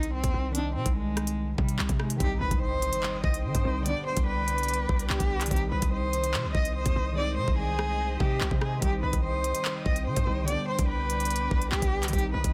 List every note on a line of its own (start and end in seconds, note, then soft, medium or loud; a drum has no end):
0.00 0.22 C2 loud
0.00 0.49 D#3 medium
0.00 0.51 G3 medium
0.00 0.52 C4 medium
0.00 0.53 D#4 medium
0.00 closed hi-hat medium
0.13 0.52 C4 medium
0.24 0.34 D#2 loud
0.24 kick loud
0.24 closed hi-hat medium
0.34 0.77 C2 loud
0.51 2.15 D#3 medium
0.55 2.18 C4 medium
0.55 0.71 D4 medium
0.55 2.19 D#4 medium
0.55 closed hi-hat medium
0.75 0.85 C3 loud
0.75 0.92 C4 loud
0.86 1.55 C2 loud
0.86 kick loud
0.86 closed hi-hat medium
0.96 1.54 G#3 medium
1.17 cross-stick loud
1.17 closed hi-hat medium
1.27 closed hi-hat medium
1.58 1.78 C3 loud
1.58 1.97 G3 medium
1.58 kick medium
1.69 closed hi-hat medium
1.79 1.89 C2 loud
1.79 clap loud
1.89 2.19 C3 loud
1.89 kick medium
1.89 closed hi-hat medium
2.00 2.16 G#3 medium
2.00 cross-stick loud
2.10 closed hi-hat medium
2.16 2.40 C2 loud
2.16 3.60 D#3 medium
2.16 3.62 G3 medium
2.16 2.36 G4 loud
2.16 3.84 C5 medium
2.16 3.84 D#5 medium
2.16 7.13 G5 medium
2.16 3.84 D#6 medium
2.16 kick loud
2.16 closed hi-hat medium
2.16 impact medium
2.22 3.63 C4 medium
2.22 3.64 D#4 medium
2.41 2.51 C2 loud
2.41 2.57 B4 medium
2.51 2.91 C2 loud
2.51 kick medium
2.51 closed hi-hat medium
2.62 3.20 C5 loud
2.82 closed hi-hat medium
2.93 closed hi-hat medium
3.03 clap loud
3.24 3.46 C2 loud
3.24 3.40 D#5 medium
3.24 kick loud
3.34 closed hi-hat medium
3.44 3.54 D#3 loud
3.44 3.83 C5 medium
3.55 3.64 G2 loud
3.55 kick loud
3.55 closed hi-hat medium
3.63 3.95 C2 loud
3.63 3.85 D#3 medium
3.63 3.83 G3 medium
3.63 3.86 C4 soft
3.63 3.87 D#4 medium
3.82 5.46 D3 medium
3.82 5.47 G3 medium
3.82 5.50 B4 medium
3.82 4.02 D5 medium
3.82 5.50 D5 medium
3.82 5.50 D6 medium
3.86 5.49 B3 medium
3.86 5.50 D4 medium
3.86 closed hi-hat medium
4.06 4.23 C5 medium
4.17 4.86 C2 loud
4.17 kick loud
4.17 closed hi-hat medium
4.26 5.06 B4 loud
4.48 closed hi-hat medium
4.58 closed hi-hat soft
4.63 closed hi-hat medium
4.68 closed hi-hat medium
4.74 closed hi-hat medium
4.89 5.09 C2 loud
4.89 kick loud
4.99 closed hi-hat medium
5.10 5.20 C2 loud
5.10 5.49 G4 loud
5.10 clap loud
5.20 5.50 C2 loud
5.20 kick loud
5.20 closed hi-hat medium
5.41 clap medium
5.41 closed hi-hat medium
5.46 7.11 D#3 medium
5.46 7.13 G3 medium
5.46 closed hi-hat medium
5.51 5.71 C2 loud
5.51 7.14 C4 medium
5.51 5.67 G4 loud
5.51 10.44 C5 medium
5.51 10.44 D#5 medium
5.51 8.79 D#6 medium
5.51 kick loud
5.51 closed hi-hat medium
5.55 7.15 D#4 medium
5.55 closed hi-hat medium
5.71 5.82 C2 loud
5.71 5.88 B4 medium
5.82 6.36 C2 loud
5.82 kick loud
5.82 closed hi-hat medium
5.92 6.51 C5 loud
6.13 closed hi-hat medium
6.24 closed hi-hat medium
6.34 6.46 C3 loud
6.34 clap loud
6.44 6.54 C2 loud
6.54 6.84 C2 loud
6.54 6.71 D#5 medium
6.54 kick loud
6.65 closed hi-hat medium
6.76 7.14 C5 medium
6.86 6.96 D#2 loud
6.86 kick loud
6.86 closed hi-hat medium
6.96 7.39 C2 loud
7.13 8.77 D#3 medium
7.13 8.78 G#3 medium
7.17 8.80 C4 medium
7.17 8.81 D#4 medium
7.17 7.33 D5 loud
7.37 7.47 C3 loud
7.37 7.54 C5 loud
7.48 8.17 C2 loud
7.48 kick loud
7.58 8.16 G#4 loud
7.79 cross-stick loud
8.20 8.40 C3 loud
8.20 8.59 G4 medium
8.20 kick loud
8.41 8.51 C2 loud
8.41 clap loud
8.51 8.81 C3 loud
8.51 kick loud
8.61 8.78 G#4 medium
8.61 cross-stick loud
8.78 9.02 C2 loud
8.78 10.22 D#3 medium
8.78 10.24 G3 medium
8.78 8.98 G4 loud
8.78 12.53 G5 medium
8.78 10.46 D#6 medium
8.78 kick loud
8.78 closed hi-hat medium
8.84 10.25 C4 medium
8.84 10.26 D#4 medium
9.03 9.13 C2 loud
9.03 9.19 B4 medium
9.13 9.53 C2 loud
9.13 kick loud
9.13 closed hi-hat medium
9.24 9.82 C5 loud
9.44 closed hi-hat medium
9.55 closed hi-hat medium
9.65 clap loud
9.86 10.08 C2 loud
9.86 10.02 D#5 medium
9.86 kick medium
9.96 closed hi-hat medium
10.06 10.16 D#3 loud
10.06 10.46 C5 medium
10.16 10.26 G2 loud
10.16 kick loud
10.16 closed hi-hat medium
10.25 10.57 C2 loud
10.25 10.47 D#3 medium
10.25 10.45 G3 medium
10.25 10.48 C4 soft
10.25 10.49 D#4 medium
10.44 12.08 D3 medium
10.44 12.09 G3 medium
10.44 12.12 B4 medium
10.44 10.64 D5 loud
10.44 12.12 D5 medium
10.44 12.12 D6 medium
10.44 closed hi-hat medium
10.49 12.11 B3 medium
10.49 12.12 D4 medium
10.68 10.85 C5 medium
10.79 11.48 C2 loud
10.79 kick loud
10.79 closed hi-hat medium
10.88 11.67 B4 loud
11.10 closed hi-hat medium
11.20 closed hi-hat soft
11.25 closed hi-hat medium
11.30 closed hi-hat medium
11.36 closed hi-hat medium
11.51 11.71 C2 loud
11.51 kick loud
11.62 closed hi-hat medium
11.72 11.82 C2 loud
11.72 12.11 G4 loud
11.72 clap loud
11.82 12.12 C2 loud
11.82 kick loud
11.82 closed hi-hat medium
12.03 clap medium
12.03 closed hi-hat medium
12.08 12.53 D#3 medium
12.08 12.53 G3 medium
12.08 closed hi-hat medium
12.13 12.33 C2 loud
12.13 12.53 C4 medium
12.13 12.29 G4 loud
12.13 12.53 C5 medium
12.13 12.53 D#5 medium
12.13 12.53 D#6 medium
12.13 kick loud
12.13 closed hi-hat medium
12.17 12.53 D#4 medium
12.17 closed hi-hat medium
12.33 12.44 C2 loud
12.33 12.50 B4 medium
12.44 12.53 C2 loud
12.44 kick loud
12.44 closed hi-hat medium